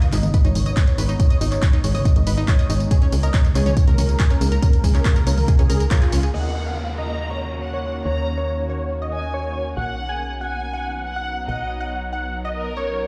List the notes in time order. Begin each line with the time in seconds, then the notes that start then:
Already playing: G#3 B3 D#4
0.02 D#5, closed hi-hat, mid tom, tambourine
0.12 G#1 D#4 D#5, clap, open hi-hat, tambourine
0.23 closed hi-hat, mid tom, tambourine
0.34 B4, kick, closed hi-hat, tambourine
0.45 G#1 D#4 C#5, closed hi-hat, tambourine
0.55 G#1, open hi-hat, mid tom, tambourine
0.66 D#5, closed hi-hat, tambourine
0.77 D#4, kick, clap, closed hi-hat, tambourine
0.87 C#5, closed hi-hat, tambourine
0.98 G#1 B4, open hi-hat, tambourine
1.09 D#4, closed hi-hat, tambourine
1.19 C#5, kick, closed hi-hat, tambourine
1.30 D#5, closed hi-hat, tambourine
1.41 G#1 D#4, open hi-hat, tambourine
1.52 C#5, clap, closed hi-hat, tambourine
1.62 B4, kick, clap, closed hi-hat, tambourine
1.73 D#4, closed hi-hat, tambourine
1.84 G#1 C#5, open hi-hat, tambourine
1.95 D#5, open hi-hat, mid tom, tambourine
2.05 D#4, kick, closed hi-hat, tambourine
2.16 G#1 D#5, closed hi-hat, tambourine
2.27 G#1 B4, open hi-hat, tambourine
2.37 D#4, closed hi-hat, tambourine
2.48 C#5, kick, clap, closed hi-hat, tambourine
2.59 D#5, closed hi-hat, tambourine
2.70 G#1 D#4, open hi-hat, tambourine
2.80 closed hi-hat, tambourine
2.91 C#3 A#3 F4 G#4 C#5, kick, closed hi-hat, tambourine
3.02 C#4, closed hi-hat, tambourine
3.12 C#2, open hi-hat, tambourine
3.23 A#4 D#5, closed hi-hat, tambourine
3.34 C#4, kick, clap, closed hi-hat, tambourine
3.45 closed hi-hat, mid tom, tambourine
3.55 C#2 G#4 C#5, clap, open hi-hat, tambourine
3.66 C#4, closed hi-hat, mid tom, tambourine
3.77 kick, closed hi-hat, tambourine
3.87 C#2 A#4, closed hi-hat, tambourine
3.98 C#2 C#4, open hi-hat, mid tom, tambourine
4.09 closed hi-hat, tambourine
4.20 G#4, kick, clap, closed hi-hat, tambourine
4.30 C#4 A#4, closed hi-hat, tambourine
4.41 C#2, open hi-hat, tambourine
4.52 A#4, closed hi-hat, tambourine
4.62 C#4 A#4, kick, closed hi-hat, tambourine
4.73 closed hi-hat, tambourine
4.84 C#2 G#4, kick, open hi-hat, tambourine
4.95 C#4 A#4, clap, closed hi-hat, tambourine
5.05 kick, clap, closed hi-hat, tambourine
5.16 A#4, closed hi-hat, mid tom, tambourine
5.27 C#2 C#4 A#4, open hi-hat, tambourine
5.38 open hi-hat, mid tom, tambourine
5.48 G#4, kick, closed hi-hat, tambourine
5.59 C#2 C#4 G#4, closed hi-hat, tambourine
5.70 C#2 A#4, open hi-hat, tambourine
5.80 A#4, closed hi-hat, tambourine
5.91 F4 C#5, kick, clap, closed hi-hat, tambourine
6.02 G#4, closed hi-hat, tambourine
6.12 C#2 C#4, open hi-hat, tambourine
6.23 G#4, closed hi-hat, tambourine
6.34 D#2 D#3 A#3 C#4 F#4 D#5 F#5, crash, downlifter
6.66 F5
6.98 D#5 A#5
7.30 C#5
7.63 F#5
7.73 C#5
8.05 D#2 C#5 A#5
8.37 C#5
8.70 C#5
9.02 D#5
9.13 G#5
9.34 C#5
9.77 B1 F#3 B3 D#4 F#5
10.09 G#5
10.41 F#5 G#5
10.73 F#5
11.05 F#5
11.16 F#5
11.48 B1 D#5 F#5
11.80 F#5
12.13 F#5
12.45 D#5
12.55 A#4
12.77 C#5